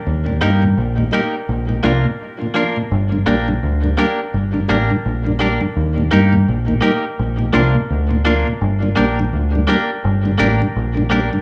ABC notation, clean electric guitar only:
X:1
M:4/4
L:1/16
Q:"Swing 16ths" 1/4=84
K:Gm
V:1 name="Clean electric guitar"
z2 [B,EGB] z3 [B,EGB] z3 [B,DFB] z3 [B,DFB] z | z2 [B,DGB] z3 [B,DGB] z3 [B,DGB] z3 [B,DGB] z | z2 [B,EGB] z3 [B,EGB] z3 [B,DFB] z3 [B,DFB] z | z2 [B,DGB] z3 [B,DGB] z3 [B,DGB] z3 [B,DGB] z |]